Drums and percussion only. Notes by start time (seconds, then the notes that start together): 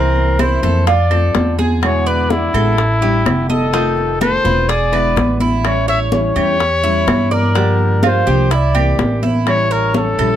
0.16 high conga
0.39 high bongo, high conga, claves
0.64 high conga
0.87 high bongo, high conga
1.11 high conga, claves
1.35 high bongo, low bongo, high conga
1.59 high conga
1.83 high bongo, high conga, claves
2.07 high bongo, high conga
2.30 high bongo, high conga
2.54 high conga, claves
2.78 high bongo, high conga
3.02 high bongo, high conga
3.26 high bongo, low bongo, high conga, claves
3.50 high bongo, high conga
3.74 high bongo
3.97 high conga
4.21 high bongo, high conga, claves
4.45 high conga
4.69 high bongo, high conga
4.93 high conga, claves
5.16 high bongo, low bongo, high conga
5.40 high conga
5.64 high bongo, high conga, claves
5.88 high bongo, high conga
6.12 high bongo, high conga
6.36 high conga, claves
6.60 high bongo, high conga
6.84 high bongo, high conga
7.07 high bongo, low bongo, high conga, claves
7.31 high bongo, high conga
7.56 high bongo
7.79 high conga
8.03 high bongo, high conga, claves
8.27 high conga
8.51 high bongo, high conga
8.75 high conga, claves
8.99 high bongo, low bongo, high conga
9.23 high conga
9.47 high bongo, high conga, claves
9.71 high bongo, high conga
9.94 high bongo, high conga
10.19 high conga, claves